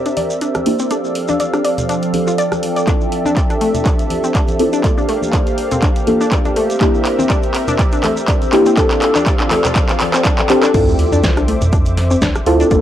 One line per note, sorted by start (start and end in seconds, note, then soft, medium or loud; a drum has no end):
0.00 0.63 A#3 medium
0.00 4.80 C4 medium
0.00 0.87 G4 medium
0.00 1.70 G4 medium
0.00 0.88 A#4 medium
0.00 1.70 C5 medium
0.00 8.73 D5 medium
0.00 0.88 E5 medium
0.00 1.70 E6 medium
0.06 0.08 D4 medium
0.06 closed hi-hat soft
0.06 shekere soft
0.17 0.22 D5 medium
0.17 open hi-hat loud
0.17 high conga medium
0.30 shekere medium
0.41 0.47 D4 medium
0.41 closed hi-hat medium
0.41 shekere medium
0.55 cross-stick medium
0.55 closed hi-hat soft
0.55 high conga medium
0.55 shekere soft
0.66 0.88 A#3 medium
0.66 0.88 D4 medium
0.66 0.88 E4 medium
0.66 0.88 G4 loud
0.66 open hi-hat medium
0.79 0.86 C4 medium
0.79 closed hi-hat soft
0.79 shekere medium
0.90 4.80 F3 medium
0.90 2.88 F3 medium
0.90 2.11 C4 medium
0.90 0.94 D4 loud
0.90 2.11 D4 medium
0.90 2.11 G4 medium
0.90 6.52 A4 medium
0.90 2.11 A4 medium
0.90 2.86 F5 medium
0.90 closed hi-hat medium
0.90 shekere medium
1.05 shekere soft
1.15 open hi-hat loud
1.28 1.33 D4 loud
1.28 3.67 A4 medium
1.28 high conga medium
1.28 shekere medium
1.40 1.43 D5 medium
1.40 closed hi-hat medium
1.40 shekere medium
1.49 3.67 D5 medium
1.53 1.56 D4 medium
1.53 cross-stick medium
1.53 closed hi-hat soft
1.53 shekere soft
1.64 1.69 D5 medium
1.64 open hi-hat medium
1.78 3.66 G5 medium
1.78 closed hi-hat soft
1.78 low conga medium
1.78 shekere medium
1.89 1.94 D4 medium
1.89 closed hi-hat medium
1.89 shekere medium
2.02 closed hi-hat soft
2.02 shekere soft
2.13 2.85 C4 medium
2.13 2.85 D4 medium
2.13 2.85 G4 medium
2.13 2.85 A4 medium
2.13 open hi-hat loud
2.13 high conga medium
2.27 2.30 F4 medium
2.27 shekere medium
2.38 2.43 D5 loud
2.38 closed hi-hat medium
2.38 shekere medium
2.52 cross-stick medium
2.52 closed hi-hat soft
2.52 high conga medium
2.52 shekere soft
2.63 open hi-hat medium
2.76 2.79 D5 medium
2.76 closed hi-hat soft
2.76 shekere medium
2.87 4.57 C4 medium
2.87 2.90 D4 loud
2.87 5.54 D4 medium
2.87 4.57 E4 medium
2.87 4.57 F4 medium
2.87 4.57 A4 medium
2.87 4.82 E5 medium
2.87 kick loud
2.87 clap soft
2.87 closed hi-hat medium
2.87 shekere medium
3.01 shekere soft
3.11 9.57 G4 medium
3.11 open hi-hat loud
3.25 3.30 D4 loud
3.25 high conga medium
3.25 shekere medium
3.37 3.40 D5 medium
3.37 kick loud
3.37 clap soft
3.37 closed hi-hat medium
3.37 shekere medium
3.50 3.53 D4 medium
3.50 4.84 E5 medium
3.50 closed hi-hat soft
3.50 shekere soft
3.61 3.69 A3 medium
3.61 open hi-hat medium
3.75 9.57 C5 medium
3.75 closed hi-hat soft
3.75 low conga medium
3.75 shekere medium
3.86 3.91 D4 medium
3.86 kick loud
3.86 clap medium
3.86 closed hi-hat medium
3.86 shekere medium
3.99 closed hi-hat soft
3.99 shekere soft
4.10 open hi-hat loud
4.10 high conga medium
4.24 4.30 C4 medium
4.24 shekere medium
4.35 4.38 D4 loud
4.35 kick loud
4.35 clap medium
4.35 closed hi-hat medium
4.35 shekere medium
4.48 closed hi-hat soft
4.48 high conga medium
4.48 shekere soft
4.60 4.82 C4 loud
4.60 4.82 E4 medium
4.60 4.82 F4 medium
4.60 4.82 A4 loud
4.60 open hi-hat medium
4.73 4.77 D4 loud
4.73 closed hi-hat soft
4.73 shekere medium
4.84 6.04 A#3 medium
4.84 6.55 A#3 medium
4.84 6.04 D4 medium
4.84 6.05 F4 medium
4.84 8.74 G4 medium
4.84 6.05 A4 medium
4.84 4.87 D5 medium
4.84 6.54 F5 medium
4.84 kick loud
4.84 clap medium
4.84 closed hi-hat medium
4.84 shekere medium
4.98 5.00 D4 medium
4.98 shekere soft
5.09 5.16 A3 medium
5.09 open hi-hat loud
5.22 high conga medium
5.22 shekere medium
5.33 5.38 D4 medium
5.33 kick loud
5.33 clap medium
5.33 closed hi-hat medium
5.33 shekere medium
5.47 closed hi-hat soft
5.47 shekere soft
5.58 open hi-hat medium
5.62 6.56 F5 medium
5.71 5.78 C4 medium
5.71 closed hi-hat soft
5.71 low conga medium
5.71 shekere medium
5.82 5.86 D4 loud
5.82 kick loud
5.82 clap medium
5.82 closed hi-hat medium
5.82 shekere medium
5.96 closed hi-hat soft
5.96 shekere soft
6.07 6.55 A#3 medium
6.07 6.55 D4 medium
6.07 6.55 F4 medium
6.07 6.55 A4 medium
6.07 open hi-hat loud
6.07 high conga medium
6.21 6.25 D4 loud
6.21 shekere medium
6.32 6.35 D5 medium
6.32 kick loud
6.32 clap medium
6.32 closed hi-hat medium
6.32 shekere medium
6.44 6.48 D4 medium
6.44 closed hi-hat soft
6.44 high conga medium
6.44 shekere soft
6.56 6.64 A3 medium
6.56 10.70 C4 medium
6.56 8.75 A#4 medium
6.56 8.75 E5 medium
6.56 open hi-hat medium
6.70 closed hi-hat soft
6.70 shekere medium
6.81 8.50 A#3 medium
6.81 6.86 D4 medium
6.81 8.50 D4 medium
6.81 8.50 E4 medium
6.81 8.50 G4 medium
6.81 kick loud
6.81 clap medium
6.81 closed hi-hat medium
6.81 shekere medium
6.94 shekere soft
7.05 clap medium
7.05 open hi-hat loud
7.19 7.25 C4 medium
7.19 high conga medium
7.19 shekere medium
7.27 7.33 D4 loud
7.27 9.57 E6 medium
7.27 kick loud
7.27 clap medium
7.27 closed hi-hat medium
7.27 shekere medium
7.43 closed hi-hat soft
7.43 shekere soft
7.54 clap medium
7.54 open hi-hat medium
7.68 7.72 D4 loud
7.68 closed hi-hat medium
7.68 low conga medium
7.68 shekere medium
7.79 7.82 D5 medium
7.79 kick loud
7.79 clap medium
7.79 closed hi-hat medium
7.79 shekere medium
7.92 7.95 D4 medium
7.92 closed hi-hat medium
7.92 shekere soft
8.03 8.11 A3 medium
8.03 clap medium
8.03 open hi-hat loud
8.03 high conga medium
8.17 shekere medium
8.28 8.33 D4 medium
8.28 kick loud
8.28 clap medium
8.28 closed hi-hat medium
8.28 shekere medium
8.42 closed hi-hat soft
8.42 high conga medium
8.42 shekere soft
8.53 8.75 A#3 loud
8.53 8.75 D4 medium
8.53 8.75 E4 medium
8.53 8.75 G4 loud
8.53 clap medium
8.53 open hi-hat medium
8.66 8.73 C4 medium
8.66 closed hi-hat soft
8.66 shekere medium
8.77 10.74 F3 medium
8.77 9.98 C4 medium
8.77 8.80 D4 loud
8.77 9.98 D4 medium
8.77 10.72 F4 medium
8.77 9.98 G4 medium
8.77 10.72 A4 medium
8.77 9.98 A4 loud
8.77 10.72 D5 medium
8.77 10.72 F5 medium
8.77 kick loud
8.77 clap medium
8.77 closed hi-hat medium
8.77 shekere medium
8.91 clap medium
8.91 closed hi-hat soft
8.91 shekere soft
9.02 clap medium
9.02 open hi-hat loud
9.12 9.20 D4 loud
9.12 10.74 A4 medium
9.12 clap medium
9.12 closed hi-hat soft
9.12 high conga medium
9.12 shekere medium
9.27 9.30 D5 medium
9.27 kick loud
9.27 clap medium
9.27 closed hi-hat medium
9.27 shekere medium
9.36 10.74 D5 medium
9.36 shekere soft
9.40 9.43 D4 medium
9.40 clap medium
9.40 closed hi-hat soft
9.51 9.59 A3 medium
9.51 clap loud
9.51 open hi-hat medium
9.51 high conga medium
9.65 10.74 G5 medium
9.65 clap medium
9.65 closed hi-hat medium
9.65 low conga medium
9.65 shekere medium
9.75 9.81 D4 medium
9.75 kick loud
9.75 clap loud
9.75 closed hi-hat medium
9.75 shekere medium
9.89 clap medium
9.89 closed hi-hat medium
9.89 shekere soft
10.00 clap loud
10.00 open hi-hat loud
10.00 high conga medium
10.14 10.20 C4 medium
10.14 clap loud
10.14 closed hi-hat soft
10.14 shekere medium
10.25 10.28 D4 loud
10.25 kick loud
10.25 clap loud
10.25 closed hi-hat medium
10.25 shekere medium
10.38 clap medium
10.38 closed hi-hat soft
10.38 high conga medium
10.38 shekere soft
10.50 10.72 C4 medium
10.50 10.72 D4 medium
10.50 10.72 G4 medium
10.50 10.72 A4 loud
10.50 clap loud
10.50 open hi-hat medium
10.63 10.67 D4 loud
10.63 clap loud
10.63 closed hi-hat soft
10.63 shekere medium
10.74 11.05 D2 loud
10.74 12.44 C4 medium
10.74 10.77 D4 loud
10.74 12.44 E4 medium
10.74 12.44 F4 medium
10.74 12.44 A4 medium
10.74 12.69 C5 medium
10.74 12.69 E5 medium
10.74 12.69 D6 medium
10.74 kick loud
10.74 closed hi-hat medium
10.74 crash loud
10.74 sub drop medium
10.74 shekere medium
10.88 shekere soft
10.99 open hi-hat loud
11.12 11.20 F2 loud
11.12 11.16 D4 loud
11.12 high conga medium
11.12 shekere medium
11.23 11.54 C2 medium
11.23 11.26 D5 medium
11.23 kick loud
11.23 snare loud
11.23 closed hi-hat medium
11.23 shekere medium
11.37 11.39 D4 medium
11.37 cross-stick medium
11.37 closed hi-hat soft
11.37 shekere soft
11.48 11.56 A3 medium
11.48 open hi-hat medium
11.61 12.16 F2 medium
11.61 closed hi-hat medium
11.61 low conga loud
11.61 shekere medium
11.72 11.78 D4 medium
11.72 kick loud
11.72 closed hi-hat medium
11.72 shekere medium
11.86 closed hi-hat medium
11.86 shekere soft
11.97 snare soft
11.97 open hi-hat loud
11.97 high conga medium
12.11 12.17 C4 medium
12.11 shekere medium
12.21 12.31 D2 loud
12.21 12.25 D4 loud
12.21 kick loud
12.21 snare loud
12.21 closed hi-hat medium
12.21 shekere medium
12.35 cross-stick medium
12.35 closed hi-hat soft
12.35 high conga medium
12.35 shekere soft
12.46 12.63 D2 medium
12.46 12.68 C4 loud
12.46 12.68 E4 medium
12.46 12.68 F4 medium
12.46 12.68 A4 loud
12.46 open hi-hat medium
12.60 12.64 D4 loud
12.60 closed hi-hat soft
12.60 shekere medium
12.71 12.81 G1 loud
12.71 12.81 A#3 medium
12.71 12.81 D4 medium
12.71 12.81 F4 medium
12.71 12.81 A4 medium
12.71 12.81 A4 loud
12.71 12.74 D5 medium
12.71 12.81 G5 medium
12.71 kick loud
12.71 closed hi-hat medium
12.71 shekere medium